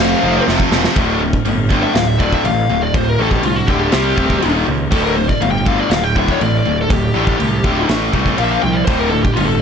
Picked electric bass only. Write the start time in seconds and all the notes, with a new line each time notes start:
0.00 F1
0.24 F1
0.48 F1
0.72 E1
0.97 D1
1.46 G1
1.95 D1
2.44 A1
2.70 D1
2.95 D1
3.20 A1
3.44 C2
3.69 D1
3.94 C2
4.18 D1
4.44 D#1
4.68 C#2
4.92 D1
5.41 G1
5.90 D1
6.41 A1
6.67 D1
6.91 D1
7.16 A1
7.41 C2
7.64 D1
7.89 A1
8.14 C2
8.39 A#1
8.64 C2
8.88 D1
9.38 G1